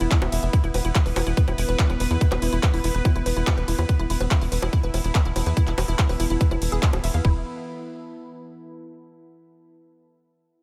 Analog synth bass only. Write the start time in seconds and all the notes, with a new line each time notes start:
0.01 E1
0.22 E1
0.32 E1
0.43 F1
0.64 E1
0.74 E1
0.85 E1
1.06 E1
1.16 E1
1.27 E1
1.48 E1
1.58 E1
1.69 E1
1.90 E1
2.00 E1
2.11 E2
2.32 E1
2.42 E1
2.53 E1
2.74 E1
2.84 E1
2.95 E1
3.16 F1
3.26 E1
3.37 E1
3.58 E1
3.68 E1
3.78 E2
3.99 E1
4.10 E1
4.20 E1
4.41 E1
4.52 E1
4.62 E1
4.83 E1
4.94 E1
5.04 E1
5.25 E1
5.36 E1
5.46 E2
5.67 E1
5.78 E1
5.88 E1
6.09 E1
6.20 E1
6.30 E1
6.51 F1
6.62 E1
6.72 E1
6.93 E1
7.04 E1
7.14 E2
7.25 E1